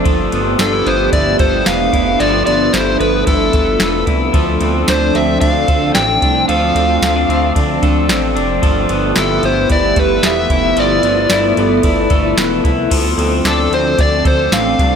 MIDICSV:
0, 0, Header, 1, 6, 480
1, 0, Start_track
1, 0, Tempo, 535714
1, 50, Time_signature, 4, 2, 24, 8
1, 13400, End_track
2, 0, Start_track
2, 0, Title_t, "Electric slide guitar"
2, 0, Program_c, 0, 29
2, 546, Note_on_c, 0, 69, 100
2, 778, Note_on_c, 0, 72, 87
2, 785, Note_off_c, 0, 69, 0
2, 1009, Note_off_c, 0, 72, 0
2, 1013, Note_on_c, 0, 74, 99
2, 1251, Note_off_c, 0, 74, 0
2, 1254, Note_on_c, 0, 72, 93
2, 1492, Note_on_c, 0, 77, 110
2, 1500, Note_off_c, 0, 72, 0
2, 1970, Note_on_c, 0, 74, 100
2, 1986, Note_off_c, 0, 77, 0
2, 2195, Note_off_c, 0, 74, 0
2, 2206, Note_on_c, 0, 74, 93
2, 2446, Note_on_c, 0, 72, 92
2, 2455, Note_off_c, 0, 74, 0
2, 2671, Note_off_c, 0, 72, 0
2, 2693, Note_on_c, 0, 71, 83
2, 2930, Note_off_c, 0, 71, 0
2, 2934, Note_on_c, 0, 69, 75
2, 3616, Note_off_c, 0, 69, 0
2, 4389, Note_on_c, 0, 72, 91
2, 4619, Note_on_c, 0, 76, 82
2, 4627, Note_off_c, 0, 72, 0
2, 4846, Note_off_c, 0, 76, 0
2, 4850, Note_on_c, 0, 77, 104
2, 5325, Note_off_c, 0, 77, 0
2, 5328, Note_on_c, 0, 79, 112
2, 5776, Note_off_c, 0, 79, 0
2, 5811, Note_on_c, 0, 77, 97
2, 6735, Note_off_c, 0, 77, 0
2, 8227, Note_on_c, 0, 69, 93
2, 8443, Note_off_c, 0, 69, 0
2, 8469, Note_on_c, 0, 72, 87
2, 8684, Note_off_c, 0, 72, 0
2, 8709, Note_on_c, 0, 74, 100
2, 8947, Note_off_c, 0, 74, 0
2, 8954, Note_on_c, 0, 71, 88
2, 9189, Note_off_c, 0, 71, 0
2, 9196, Note_on_c, 0, 76, 112
2, 9674, Note_on_c, 0, 74, 98
2, 9677, Note_off_c, 0, 76, 0
2, 11067, Note_off_c, 0, 74, 0
2, 12065, Note_on_c, 0, 69, 97
2, 12282, Note_off_c, 0, 69, 0
2, 12311, Note_on_c, 0, 72, 85
2, 12548, Note_off_c, 0, 72, 0
2, 12549, Note_on_c, 0, 74, 102
2, 12786, Note_off_c, 0, 74, 0
2, 12790, Note_on_c, 0, 72, 88
2, 13024, Note_on_c, 0, 77, 111
2, 13027, Note_off_c, 0, 72, 0
2, 13400, Note_off_c, 0, 77, 0
2, 13400, End_track
3, 0, Start_track
3, 0, Title_t, "Clean electric guitar"
3, 0, Program_c, 1, 27
3, 0, Note_on_c, 1, 60, 57
3, 0, Note_on_c, 1, 62, 66
3, 41, Note_on_c, 1, 53, 90
3, 48, Note_on_c, 1, 69, 75
3, 96, Note_off_c, 1, 60, 0
3, 285, Note_on_c, 1, 59, 63
3, 524, Note_off_c, 1, 62, 0
3, 527, Note_on_c, 1, 62, 59
3, 649, Note_off_c, 1, 62, 0
3, 649, Note_on_c, 1, 64, 52
3, 760, Note_off_c, 1, 59, 0
3, 771, Note_on_c, 1, 59, 61
3, 997, Note_off_c, 1, 64, 0
3, 1008, Note_on_c, 1, 64, 68
3, 1244, Note_off_c, 1, 69, 0
3, 1247, Note_on_c, 1, 69, 69
3, 1477, Note_off_c, 1, 59, 0
3, 1488, Note_on_c, 1, 59, 64
3, 1717, Note_off_c, 1, 64, 0
3, 1727, Note_on_c, 1, 64, 61
3, 1965, Note_off_c, 1, 53, 0
3, 1969, Note_on_c, 1, 53, 92
3, 1970, Note_off_c, 1, 69, 0
3, 1974, Note_on_c, 1, 69, 71
3, 2193, Note_off_c, 1, 59, 0
3, 2203, Note_on_c, 1, 59, 60
3, 2433, Note_off_c, 1, 64, 0
3, 2444, Note_on_c, 1, 64, 63
3, 2671, Note_off_c, 1, 59, 0
3, 2682, Note_on_c, 1, 59, 57
3, 2915, Note_off_c, 1, 64, 0
3, 2926, Note_on_c, 1, 64, 64
3, 3161, Note_off_c, 1, 69, 0
3, 3164, Note_on_c, 1, 69, 60
3, 3392, Note_off_c, 1, 59, 0
3, 3403, Note_on_c, 1, 59, 62
3, 3631, Note_off_c, 1, 64, 0
3, 3642, Note_on_c, 1, 64, 58
3, 3880, Note_off_c, 1, 53, 0
3, 3883, Note_on_c, 1, 53, 87
3, 3887, Note_off_c, 1, 69, 0
3, 3891, Note_on_c, 1, 69, 72
3, 3934, Note_off_c, 1, 64, 0
3, 3935, Note_off_c, 1, 59, 0
3, 4125, Note_on_c, 1, 60, 59
3, 4366, Note_on_c, 1, 62, 63
3, 4593, Note_off_c, 1, 60, 0
3, 4604, Note_on_c, 1, 60, 61
3, 4845, Note_off_c, 1, 62, 0
3, 4849, Note_on_c, 1, 62, 60
3, 5085, Note_off_c, 1, 69, 0
3, 5088, Note_on_c, 1, 69, 68
3, 5321, Note_off_c, 1, 60, 0
3, 5332, Note_on_c, 1, 60, 60
3, 5571, Note_off_c, 1, 62, 0
3, 5574, Note_on_c, 1, 62, 62
3, 5809, Note_off_c, 1, 53, 0
3, 5812, Note_on_c, 1, 53, 93
3, 5816, Note_off_c, 1, 69, 0
3, 5820, Note_on_c, 1, 69, 68
3, 6045, Note_off_c, 1, 60, 0
3, 6056, Note_on_c, 1, 60, 61
3, 6282, Note_off_c, 1, 60, 0
3, 6290, Note_off_c, 1, 62, 0
3, 6293, Note_on_c, 1, 60, 67
3, 6413, Note_off_c, 1, 60, 0
3, 6413, Note_on_c, 1, 62, 53
3, 6534, Note_on_c, 1, 60, 62
3, 6758, Note_off_c, 1, 62, 0
3, 6768, Note_on_c, 1, 62, 64
3, 7009, Note_off_c, 1, 69, 0
3, 7013, Note_on_c, 1, 69, 67
3, 7239, Note_off_c, 1, 60, 0
3, 7249, Note_on_c, 1, 60, 62
3, 7482, Note_off_c, 1, 62, 0
3, 7485, Note_on_c, 1, 62, 64
3, 7722, Note_off_c, 1, 53, 0
3, 7726, Note_on_c, 1, 53, 80
3, 7729, Note_off_c, 1, 69, 0
3, 7732, Note_on_c, 1, 69, 76
3, 7778, Note_off_c, 1, 60, 0
3, 7965, Note_on_c, 1, 59, 63
3, 8203, Note_off_c, 1, 62, 0
3, 8207, Note_on_c, 1, 64, 63
3, 8439, Note_off_c, 1, 59, 0
3, 8449, Note_on_c, 1, 59, 62
3, 8678, Note_off_c, 1, 64, 0
3, 8689, Note_on_c, 1, 64, 63
3, 8925, Note_off_c, 1, 69, 0
3, 8929, Note_on_c, 1, 69, 64
3, 9160, Note_off_c, 1, 59, 0
3, 9170, Note_on_c, 1, 59, 64
3, 9402, Note_off_c, 1, 64, 0
3, 9413, Note_on_c, 1, 64, 67
3, 9646, Note_off_c, 1, 53, 0
3, 9650, Note_on_c, 1, 53, 89
3, 9652, Note_off_c, 1, 69, 0
3, 9655, Note_on_c, 1, 69, 73
3, 9881, Note_off_c, 1, 59, 0
3, 9892, Note_on_c, 1, 59, 59
3, 10119, Note_off_c, 1, 64, 0
3, 10130, Note_on_c, 1, 64, 69
3, 10358, Note_off_c, 1, 59, 0
3, 10369, Note_on_c, 1, 59, 59
3, 10597, Note_off_c, 1, 64, 0
3, 10608, Note_on_c, 1, 64, 62
3, 10842, Note_off_c, 1, 69, 0
3, 10846, Note_on_c, 1, 69, 64
3, 11074, Note_off_c, 1, 59, 0
3, 11085, Note_on_c, 1, 59, 61
3, 11315, Note_off_c, 1, 64, 0
3, 11326, Note_on_c, 1, 64, 62
3, 11561, Note_off_c, 1, 53, 0
3, 11564, Note_on_c, 1, 53, 80
3, 11567, Note_off_c, 1, 69, 0
3, 11570, Note_on_c, 1, 69, 71
3, 11616, Note_off_c, 1, 59, 0
3, 11616, Note_off_c, 1, 64, 0
3, 11804, Note_on_c, 1, 60, 61
3, 12044, Note_on_c, 1, 62, 65
3, 12271, Note_off_c, 1, 60, 0
3, 12281, Note_on_c, 1, 60, 58
3, 12523, Note_off_c, 1, 62, 0
3, 12527, Note_on_c, 1, 62, 65
3, 12764, Note_off_c, 1, 69, 0
3, 12767, Note_on_c, 1, 69, 71
3, 12994, Note_off_c, 1, 60, 0
3, 13005, Note_on_c, 1, 60, 66
3, 13245, Note_off_c, 1, 62, 0
3, 13249, Note_on_c, 1, 62, 60
3, 13400, Note_off_c, 1, 53, 0
3, 13400, Note_off_c, 1, 60, 0
3, 13400, Note_off_c, 1, 62, 0
3, 13400, Note_off_c, 1, 69, 0
3, 13400, End_track
4, 0, Start_track
4, 0, Title_t, "Ambient pad"
4, 0, Program_c, 2, 92
4, 0, Note_on_c, 2, 53, 73
4, 0, Note_on_c, 2, 57, 65
4, 35, Note_on_c, 2, 67, 84
4, 36, Note_on_c, 2, 59, 66
4, 39, Note_on_c, 2, 62, 73
4, 1943, Note_off_c, 2, 67, 0
4, 1970, Note_on_c, 2, 69, 87
4, 3847, Note_off_c, 2, 59, 0
4, 3849, Note_off_c, 2, 62, 0
4, 3853, Note_off_c, 2, 57, 0
4, 3894, Note_on_c, 2, 57, 70
4, 3898, Note_on_c, 2, 60, 64
4, 3898, Note_on_c, 2, 62, 68
4, 7692, Note_off_c, 2, 53, 0
4, 7694, Note_off_c, 2, 69, 0
4, 7697, Note_off_c, 2, 57, 0
4, 7698, Note_off_c, 2, 62, 0
4, 7699, Note_off_c, 2, 60, 0
4, 7727, Note_on_c, 2, 67, 80
4, 7729, Note_on_c, 2, 53, 74
4, 7730, Note_on_c, 2, 59, 73
4, 7733, Note_on_c, 2, 64, 69
4, 7735, Note_on_c, 2, 57, 65
4, 9630, Note_off_c, 2, 67, 0
4, 9648, Note_on_c, 2, 69, 86
4, 11534, Note_off_c, 2, 53, 0
4, 11534, Note_off_c, 2, 59, 0
4, 11536, Note_off_c, 2, 64, 0
4, 11537, Note_off_c, 2, 57, 0
4, 11550, Note_off_c, 2, 69, 0
4, 11571, Note_on_c, 2, 53, 83
4, 11574, Note_on_c, 2, 57, 72
4, 11576, Note_on_c, 2, 62, 74
4, 11579, Note_on_c, 2, 60, 68
4, 11579, Note_on_c, 2, 69, 83
4, 13400, Note_off_c, 2, 53, 0
4, 13400, Note_off_c, 2, 57, 0
4, 13400, Note_off_c, 2, 60, 0
4, 13400, Note_off_c, 2, 62, 0
4, 13400, Note_off_c, 2, 69, 0
4, 13400, End_track
5, 0, Start_track
5, 0, Title_t, "Analog synth bass"
5, 0, Program_c, 3, 38
5, 51, Note_on_c, 3, 31, 98
5, 262, Note_off_c, 3, 31, 0
5, 293, Note_on_c, 3, 31, 96
5, 503, Note_off_c, 3, 31, 0
5, 531, Note_on_c, 3, 31, 92
5, 742, Note_off_c, 3, 31, 0
5, 775, Note_on_c, 3, 31, 98
5, 984, Note_off_c, 3, 31, 0
5, 1010, Note_on_c, 3, 31, 111
5, 1222, Note_off_c, 3, 31, 0
5, 1249, Note_on_c, 3, 31, 95
5, 1461, Note_off_c, 3, 31, 0
5, 1497, Note_on_c, 3, 28, 106
5, 1705, Note_off_c, 3, 28, 0
5, 1731, Note_on_c, 3, 29, 89
5, 1942, Note_off_c, 3, 29, 0
5, 1975, Note_on_c, 3, 31, 107
5, 2184, Note_off_c, 3, 31, 0
5, 2214, Note_on_c, 3, 31, 93
5, 2424, Note_off_c, 3, 31, 0
5, 2452, Note_on_c, 3, 31, 102
5, 2663, Note_off_c, 3, 31, 0
5, 2691, Note_on_c, 3, 31, 99
5, 2902, Note_off_c, 3, 31, 0
5, 2928, Note_on_c, 3, 31, 100
5, 3140, Note_off_c, 3, 31, 0
5, 3167, Note_on_c, 3, 31, 98
5, 3380, Note_off_c, 3, 31, 0
5, 3413, Note_on_c, 3, 28, 92
5, 3623, Note_off_c, 3, 28, 0
5, 3649, Note_on_c, 3, 36, 92
5, 3861, Note_off_c, 3, 36, 0
5, 3888, Note_on_c, 3, 38, 106
5, 4101, Note_off_c, 3, 38, 0
5, 4129, Note_on_c, 3, 38, 99
5, 4341, Note_off_c, 3, 38, 0
5, 4377, Note_on_c, 3, 38, 91
5, 4585, Note_off_c, 3, 38, 0
5, 4616, Note_on_c, 3, 38, 102
5, 4825, Note_off_c, 3, 38, 0
5, 4853, Note_on_c, 3, 38, 106
5, 5063, Note_off_c, 3, 38, 0
5, 5092, Note_on_c, 3, 38, 92
5, 5303, Note_off_c, 3, 38, 0
5, 5335, Note_on_c, 3, 33, 92
5, 5544, Note_off_c, 3, 33, 0
5, 5574, Note_on_c, 3, 36, 98
5, 5784, Note_off_c, 3, 36, 0
5, 5814, Note_on_c, 3, 38, 90
5, 6024, Note_off_c, 3, 38, 0
5, 6049, Note_on_c, 3, 38, 96
5, 6261, Note_off_c, 3, 38, 0
5, 6290, Note_on_c, 3, 38, 99
5, 6501, Note_off_c, 3, 38, 0
5, 6530, Note_on_c, 3, 38, 110
5, 6741, Note_off_c, 3, 38, 0
5, 6772, Note_on_c, 3, 38, 98
5, 6983, Note_off_c, 3, 38, 0
5, 7015, Note_on_c, 3, 38, 95
5, 7253, Note_on_c, 3, 33, 94
5, 7267, Note_off_c, 3, 38, 0
5, 7495, Note_on_c, 3, 29, 85
5, 7508, Note_off_c, 3, 33, 0
5, 7704, Note_off_c, 3, 29, 0
5, 7732, Note_on_c, 3, 31, 97
5, 7943, Note_off_c, 3, 31, 0
5, 7972, Note_on_c, 3, 31, 87
5, 8183, Note_off_c, 3, 31, 0
5, 8215, Note_on_c, 3, 31, 99
5, 8424, Note_off_c, 3, 31, 0
5, 8450, Note_on_c, 3, 31, 104
5, 8662, Note_off_c, 3, 31, 0
5, 8688, Note_on_c, 3, 31, 98
5, 8900, Note_off_c, 3, 31, 0
5, 8931, Note_on_c, 3, 31, 94
5, 9142, Note_off_c, 3, 31, 0
5, 9169, Note_on_c, 3, 28, 101
5, 9381, Note_off_c, 3, 28, 0
5, 9406, Note_on_c, 3, 29, 103
5, 9619, Note_off_c, 3, 29, 0
5, 9646, Note_on_c, 3, 31, 103
5, 9859, Note_off_c, 3, 31, 0
5, 9884, Note_on_c, 3, 31, 99
5, 10098, Note_off_c, 3, 31, 0
5, 10124, Note_on_c, 3, 31, 91
5, 10338, Note_off_c, 3, 31, 0
5, 10368, Note_on_c, 3, 31, 101
5, 10580, Note_off_c, 3, 31, 0
5, 10609, Note_on_c, 3, 31, 105
5, 10821, Note_off_c, 3, 31, 0
5, 10847, Note_on_c, 3, 31, 99
5, 11060, Note_off_c, 3, 31, 0
5, 11091, Note_on_c, 3, 28, 97
5, 11302, Note_off_c, 3, 28, 0
5, 11330, Note_on_c, 3, 36, 101
5, 11542, Note_off_c, 3, 36, 0
5, 11570, Note_on_c, 3, 38, 98
5, 11781, Note_off_c, 3, 38, 0
5, 11807, Note_on_c, 3, 38, 107
5, 12020, Note_off_c, 3, 38, 0
5, 12049, Note_on_c, 3, 38, 98
5, 12261, Note_off_c, 3, 38, 0
5, 12288, Note_on_c, 3, 38, 109
5, 12500, Note_off_c, 3, 38, 0
5, 12534, Note_on_c, 3, 38, 102
5, 12744, Note_off_c, 3, 38, 0
5, 12771, Note_on_c, 3, 38, 95
5, 12982, Note_off_c, 3, 38, 0
5, 13007, Note_on_c, 3, 33, 96
5, 13220, Note_off_c, 3, 33, 0
5, 13252, Note_on_c, 3, 36, 95
5, 13400, Note_off_c, 3, 36, 0
5, 13400, End_track
6, 0, Start_track
6, 0, Title_t, "Drums"
6, 49, Note_on_c, 9, 51, 52
6, 50, Note_on_c, 9, 36, 122
6, 138, Note_off_c, 9, 51, 0
6, 140, Note_off_c, 9, 36, 0
6, 290, Note_on_c, 9, 51, 49
6, 379, Note_off_c, 9, 51, 0
6, 528, Note_on_c, 9, 54, 64
6, 529, Note_on_c, 9, 38, 106
6, 532, Note_on_c, 9, 51, 57
6, 617, Note_off_c, 9, 54, 0
6, 619, Note_off_c, 9, 38, 0
6, 621, Note_off_c, 9, 51, 0
6, 775, Note_on_c, 9, 51, 36
6, 865, Note_off_c, 9, 51, 0
6, 1011, Note_on_c, 9, 36, 84
6, 1011, Note_on_c, 9, 51, 61
6, 1100, Note_off_c, 9, 36, 0
6, 1100, Note_off_c, 9, 51, 0
6, 1248, Note_on_c, 9, 51, 46
6, 1250, Note_on_c, 9, 36, 97
6, 1338, Note_off_c, 9, 51, 0
6, 1339, Note_off_c, 9, 36, 0
6, 1489, Note_on_c, 9, 38, 124
6, 1489, Note_on_c, 9, 54, 67
6, 1492, Note_on_c, 9, 51, 61
6, 1578, Note_off_c, 9, 38, 0
6, 1579, Note_off_c, 9, 54, 0
6, 1582, Note_off_c, 9, 51, 0
6, 1731, Note_on_c, 9, 36, 79
6, 1734, Note_on_c, 9, 51, 43
6, 1820, Note_off_c, 9, 36, 0
6, 1824, Note_off_c, 9, 51, 0
6, 1974, Note_on_c, 9, 51, 52
6, 2063, Note_off_c, 9, 51, 0
6, 2210, Note_on_c, 9, 51, 48
6, 2300, Note_off_c, 9, 51, 0
6, 2451, Note_on_c, 9, 54, 66
6, 2453, Note_on_c, 9, 38, 102
6, 2455, Note_on_c, 9, 51, 64
6, 2541, Note_off_c, 9, 54, 0
6, 2542, Note_off_c, 9, 38, 0
6, 2545, Note_off_c, 9, 51, 0
6, 2693, Note_on_c, 9, 51, 40
6, 2782, Note_off_c, 9, 51, 0
6, 2929, Note_on_c, 9, 36, 88
6, 2930, Note_on_c, 9, 51, 60
6, 3019, Note_off_c, 9, 36, 0
6, 3020, Note_off_c, 9, 51, 0
6, 3165, Note_on_c, 9, 51, 43
6, 3168, Note_on_c, 9, 36, 89
6, 3255, Note_off_c, 9, 51, 0
6, 3258, Note_off_c, 9, 36, 0
6, 3403, Note_on_c, 9, 38, 127
6, 3404, Note_on_c, 9, 54, 70
6, 3407, Note_on_c, 9, 51, 64
6, 3493, Note_off_c, 9, 38, 0
6, 3493, Note_off_c, 9, 54, 0
6, 3496, Note_off_c, 9, 51, 0
6, 3647, Note_on_c, 9, 51, 37
6, 3648, Note_on_c, 9, 36, 88
6, 3737, Note_off_c, 9, 51, 0
6, 3738, Note_off_c, 9, 36, 0
6, 3887, Note_on_c, 9, 36, 118
6, 3887, Note_on_c, 9, 51, 51
6, 3977, Note_off_c, 9, 36, 0
6, 3977, Note_off_c, 9, 51, 0
6, 4126, Note_on_c, 9, 51, 49
6, 4216, Note_off_c, 9, 51, 0
6, 4370, Note_on_c, 9, 54, 70
6, 4372, Note_on_c, 9, 38, 119
6, 4374, Note_on_c, 9, 51, 59
6, 4460, Note_off_c, 9, 54, 0
6, 4461, Note_off_c, 9, 38, 0
6, 4464, Note_off_c, 9, 51, 0
6, 4614, Note_on_c, 9, 51, 38
6, 4704, Note_off_c, 9, 51, 0
6, 4851, Note_on_c, 9, 36, 89
6, 4851, Note_on_c, 9, 51, 61
6, 4941, Note_off_c, 9, 36, 0
6, 4941, Note_off_c, 9, 51, 0
6, 5091, Note_on_c, 9, 51, 42
6, 5093, Note_on_c, 9, 36, 100
6, 5180, Note_off_c, 9, 51, 0
6, 5182, Note_off_c, 9, 36, 0
6, 5329, Note_on_c, 9, 38, 127
6, 5330, Note_on_c, 9, 54, 71
6, 5333, Note_on_c, 9, 51, 62
6, 5419, Note_off_c, 9, 38, 0
6, 5419, Note_off_c, 9, 54, 0
6, 5423, Note_off_c, 9, 51, 0
6, 5574, Note_on_c, 9, 36, 82
6, 5575, Note_on_c, 9, 51, 41
6, 5663, Note_off_c, 9, 36, 0
6, 5665, Note_off_c, 9, 51, 0
6, 5814, Note_on_c, 9, 51, 53
6, 5904, Note_off_c, 9, 51, 0
6, 6055, Note_on_c, 9, 51, 50
6, 6144, Note_off_c, 9, 51, 0
6, 6293, Note_on_c, 9, 54, 67
6, 6295, Note_on_c, 9, 38, 112
6, 6297, Note_on_c, 9, 51, 64
6, 6383, Note_off_c, 9, 54, 0
6, 6385, Note_off_c, 9, 38, 0
6, 6387, Note_off_c, 9, 51, 0
6, 6541, Note_on_c, 9, 51, 38
6, 6630, Note_off_c, 9, 51, 0
6, 6773, Note_on_c, 9, 36, 86
6, 6775, Note_on_c, 9, 51, 59
6, 6863, Note_off_c, 9, 36, 0
6, 6864, Note_off_c, 9, 51, 0
6, 7013, Note_on_c, 9, 36, 102
6, 7013, Note_on_c, 9, 51, 41
6, 7102, Note_off_c, 9, 51, 0
6, 7103, Note_off_c, 9, 36, 0
6, 7252, Note_on_c, 9, 38, 119
6, 7252, Note_on_c, 9, 54, 69
6, 7255, Note_on_c, 9, 51, 65
6, 7341, Note_off_c, 9, 38, 0
6, 7342, Note_off_c, 9, 54, 0
6, 7345, Note_off_c, 9, 51, 0
6, 7495, Note_on_c, 9, 51, 42
6, 7585, Note_off_c, 9, 51, 0
6, 7731, Note_on_c, 9, 36, 118
6, 7731, Note_on_c, 9, 51, 54
6, 7820, Note_off_c, 9, 36, 0
6, 7821, Note_off_c, 9, 51, 0
6, 7967, Note_on_c, 9, 51, 48
6, 8056, Note_off_c, 9, 51, 0
6, 8203, Note_on_c, 9, 54, 73
6, 8205, Note_on_c, 9, 38, 113
6, 8207, Note_on_c, 9, 51, 62
6, 8293, Note_off_c, 9, 54, 0
6, 8294, Note_off_c, 9, 38, 0
6, 8297, Note_off_c, 9, 51, 0
6, 8449, Note_on_c, 9, 51, 37
6, 8539, Note_off_c, 9, 51, 0
6, 8687, Note_on_c, 9, 51, 57
6, 8688, Note_on_c, 9, 36, 87
6, 8777, Note_off_c, 9, 51, 0
6, 8778, Note_off_c, 9, 36, 0
6, 8926, Note_on_c, 9, 51, 45
6, 8929, Note_on_c, 9, 36, 92
6, 9016, Note_off_c, 9, 51, 0
6, 9019, Note_off_c, 9, 36, 0
6, 9167, Note_on_c, 9, 38, 124
6, 9168, Note_on_c, 9, 54, 69
6, 9171, Note_on_c, 9, 51, 65
6, 9257, Note_off_c, 9, 38, 0
6, 9257, Note_off_c, 9, 54, 0
6, 9260, Note_off_c, 9, 51, 0
6, 9408, Note_on_c, 9, 36, 78
6, 9408, Note_on_c, 9, 51, 42
6, 9498, Note_off_c, 9, 36, 0
6, 9498, Note_off_c, 9, 51, 0
6, 9647, Note_on_c, 9, 51, 54
6, 9737, Note_off_c, 9, 51, 0
6, 9884, Note_on_c, 9, 51, 47
6, 9973, Note_off_c, 9, 51, 0
6, 10120, Note_on_c, 9, 54, 66
6, 10121, Note_on_c, 9, 38, 108
6, 10124, Note_on_c, 9, 51, 63
6, 10210, Note_off_c, 9, 54, 0
6, 10211, Note_off_c, 9, 38, 0
6, 10213, Note_off_c, 9, 51, 0
6, 10369, Note_on_c, 9, 51, 39
6, 10458, Note_off_c, 9, 51, 0
6, 10603, Note_on_c, 9, 51, 64
6, 10606, Note_on_c, 9, 36, 81
6, 10693, Note_off_c, 9, 51, 0
6, 10696, Note_off_c, 9, 36, 0
6, 10842, Note_on_c, 9, 51, 43
6, 10847, Note_on_c, 9, 36, 102
6, 10932, Note_off_c, 9, 51, 0
6, 10937, Note_off_c, 9, 36, 0
6, 11088, Note_on_c, 9, 38, 127
6, 11089, Note_on_c, 9, 54, 71
6, 11092, Note_on_c, 9, 51, 60
6, 11178, Note_off_c, 9, 38, 0
6, 11179, Note_off_c, 9, 54, 0
6, 11182, Note_off_c, 9, 51, 0
6, 11331, Note_on_c, 9, 36, 86
6, 11333, Note_on_c, 9, 51, 38
6, 11420, Note_off_c, 9, 36, 0
6, 11422, Note_off_c, 9, 51, 0
6, 11570, Note_on_c, 9, 36, 114
6, 11571, Note_on_c, 9, 49, 107
6, 11572, Note_on_c, 9, 51, 53
6, 11660, Note_off_c, 9, 36, 0
6, 11660, Note_off_c, 9, 49, 0
6, 11661, Note_off_c, 9, 51, 0
6, 11816, Note_on_c, 9, 51, 53
6, 11905, Note_off_c, 9, 51, 0
6, 12051, Note_on_c, 9, 54, 72
6, 12052, Note_on_c, 9, 38, 108
6, 12055, Note_on_c, 9, 51, 65
6, 12140, Note_off_c, 9, 54, 0
6, 12142, Note_off_c, 9, 38, 0
6, 12144, Note_off_c, 9, 51, 0
6, 12300, Note_on_c, 9, 51, 39
6, 12390, Note_off_c, 9, 51, 0
6, 12531, Note_on_c, 9, 36, 90
6, 12531, Note_on_c, 9, 51, 62
6, 12620, Note_off_c, 9, 51, 0
6, 12621, Note_off_c, 9, 36, 0
6, 12770, Note_on_c, 9, 36, 100
6, 12771, Note_on_c, 9, 51, 44
6, 12860, Note_off_c, 9, 36, 0
6, 12861, Note_off_c, 9, 51, 0
6, 13012, Note_on_c, 9, 38, 119
6, 13013, Note_on_c, 9, 54, 73
6, 13016, Note_on_c, 9, 51, 64
6, 13102, Note_off_c, 9, 38, 0
6, 13102, Note_off_c, 9, 54, 0
6, 13105, Note_off_c, 9, 51, 0
6, 13251, Note_on_c, 9, 36, 94
6, 13255, Note_on_c, 9, 51, 41
6, 13341, Note_off_c, 9, 36, 0
6, 13345, Note_off_c, 9, 51, 0
6, 13400, End_track
0, 0, End_of_file